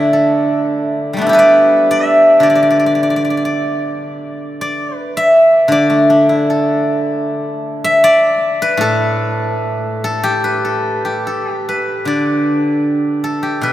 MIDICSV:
0, 0, Header, 1, 2, 480
1, 0, Start_track
1, 0, Tempo, 764331
1, 558, Time_signature, 2, 2, 24, 8
1, 1525, Tempo, 819672
1, 3445, Tempo, 787402
1, 4405, Tempo, 761421
1, 5365, Tempo, 820793
1, 6805, Tempo, 785340
1, 8309, End_track
2, 0, Start_track
2, 0, Title_t, "Guzheng"
2, 0, Program_c, 0, 107
2, 0, Note_on_c, 0, 50, 69
2, 0, Note_on_c, 0, 57, 46
2, 0, Note_on_c, 0, 62, 58
2, 0, Note_on_c, 0, 64, 52
2, 0, Note_on_c, 0, 74, 82
2, 0, Note_on_c, 0, 76, 91
2, 82, Note_on_c, 0, 69, 52
2, 347, Note_off_c, 0, 76, 0
2, 680, Note_off_c, 0, 57, 0
2, 712, Note_on_c, 0, 55, 45
2, 733, Note_on_c, 0, 57, 51
2, 743, Note_on_c, 0, 59, 50
2, 755, Note_off_c, 0, 62, 0
2, 762, Note_on_c, 0, 62, 56
2, 766, Note_off_c, 0, 74, 0
2, 787, Note_off_c, 0, 64, 0
2, 795, Note_on_c, 0, 64, 61
2, 811, Note_on_c, 0, 67, 69
2, 828, Note_off_c, 0, 69, 0
2, 835, Note_on_c, 0, 69, 70
2, 844, Note_on_c, 0, 71, 70
2, 871, Note_on_c, 0, 74, 91
2, 873, Note_off_c, 0, 55, 0
2, 1034, Note_off_c, 0, 50, 0
2, 1198, Note_on_c, 0, 76, 100
2, 1507, Note_on_c, 0, 50, 61
2, 1524, Note_off_c, 0, 74, 0
2, 1526, Note_on_c, 0, 74, 77
2, 1563, Note_off_c, 0, 74, 0
2, 1565, Note_on_c, 0, 74, 58
2, 1596, Note_off_c, 0, 74, 0
2, 1598, Note_on_c, 0, 74, 61
2, 1638, Note_off_c, 0, 74, 0
2, 1640, Note_on_c, 0, 74, 51
2, 1684, Note_off_c, 0, 74, 0
2, 1686, Note_on_c, 0, 74, 60
2, 1737, Note_off_c, 0, 74, 0
2, 1739, Note_on_c, 0, 74, 51
2, 1777, Note_off_c, 0, 74, 0
2, 1779, Note_on_c, 0, 74, 57
2, 1828, Note_off_c, 0, 74, 0
2, 1830, Note_on_c, 0, 74, 48
2, 1874, Note_off_c, 0, 74, 0
2, 1877, Note_on_c, 0, 74, 57
2, 1916, Note_off_c, 0, 74, 0
2, 1919, Note_on_c, 0, 74, 50
2, 1952, Note_off_c, 0, 74, 0
2, 1954, Note_on_c, 0, 74, 55
2, 2001, Note_off_c, 0, 74, 0
2, 2004, Note_on_c, 0, 74, 46
2, 2034, Note_off_c, 0, 74, 0
2, 2037, Note_on_c, 0, 74, 48
2, 2075, Note_off_c, 0, 74, 0
2, 2077, Note_on_c, 0, 74, 46
2, 2088, Note_off_c, 0, 71, 0
2, 2121, Note_off_c, 0, 74, 0
2, 2123, Note_on_c, 0, 74, 58
2, 2168, Note_off_c, 0, 69, 0
2, 2228, Note_off_c, 0, 76, 0
2, 2239, Note_off_c, 0, 67, 0
2, 2372, Note_off_c, 0, 64, 0
2, 2454, Note_off_c, 0, 62, 0
2, 2612, Note_off_c, 0, 59, 0
2, 2736, Note_off_c, 0, 57, 0
2, 2801, Note_off_c, 0, 74, 0
2, 2804, Note_on_c, 0, 74, 82
2, 2967, Note_off_c, 0, 50, 0
2, 3009, Note_off_c, 0, 74, 0
2, 3009, Note_on_c, 0, 71, 82
2, 3130, Note_on_c, 0, 76, 97
2, 3430, Note_on_c, 0, 50, 66
2, 3450, Note_off_c, 0, 71, 0
2, 3452, Note_on_c, 0, 74, 89
2, 3561, Note_on_c, 0, 57, 44
2, 3684, Note_on_c, 0, 62, 57
2, 3801, Note_on_c, 0, 64, 47
2, 3928, Note_on_c, 0, 69, 51
2, 4167, Note_off_c, 0, 76, 0
2, 4522, Note_off_c, 0, 57, 0
2, 4585, Note_off_c, 0, 74, 0
2, 4642, Note_off_c, 0, 62, 0
2, 4759, Note_off_c, 0, 64, 0
2, 4759, Note_on_c, 0, 76, 113
2, 4872, Note_off_c, 0, 50, 0
2, 4880, Note_off_c, 0, 69, 0
2, 4882, Note_on_c, 0, 74, 113
2, 5248, Note_on_c, 0, 71, 95
2, 5345, Note_on_c, 0, 45, 73
2, 5366, Note_on_c, 0, 69, 94
2, 5810, Note_off_c, 0, 76, 0
2, 5997, Note_off_c, 0, 74, 0
2, 6085, Note_off_c, 0, 69, 0
2, 6088, Note_on_c, 0, 69, 89
2, 6201, Note_on_c, 0, 67, 91
2, 6319, Note_off_c, 0, 71, 0
2, 6321, Note_on_c, 0, 71, 61
2, 6440, Note_off_c, 0, 69, 0
2, 6442, Note_on_c, 0, 69, 54
2, 6675, Note_off_c, 0, 67, 0
2, 6677, Note_on_c, 0, 67, 56
2, 6796, Note_off_c, 0, 45, 0
2, 6803, Note_off_c, 0, 69, 0
2, 6805, Note_on_c, 0, 69, 59
2, 6952, Note_off_c, 0, 67, 0
2, 6952, Note_off_c, 0, 69, 0
2, 6952, Note_on_c, 0, 67, 59
2, 7059, Note_off_c, 0, 71, 0
2, 7061, Note_on_c, 0, 71, 58
2, 7286, Note_on_c, 0, 50, 51
2, 7298, Note_on_c, 0, 74, 69
2, 8007, Note_off_c, 0, 67, 0
2, 8010, Note_on_c, 0, 69, 67
2, 8125, Note_on_c, 0, 67, 59
2, 8240, Note_on_c, 0, 47, 51
2, 8243, Note_off_c, 0, 50, 0
2, 8248, Note_off_c, 0, 71, 0
2, 8251, Note_on_c, 0, 71, 71
2, 8309, Note_off_c, 0, 47, 0
2, 8309, Note_off_c, 0, 67, 0
2, 8309, Note_off_c, 0, 69, 0
2, 8309, Note_off_c, 0, 71, 0
2, 8309, Note_off_c, 0, 74, 0
2, 8309, End_track
0, 0, End_of_file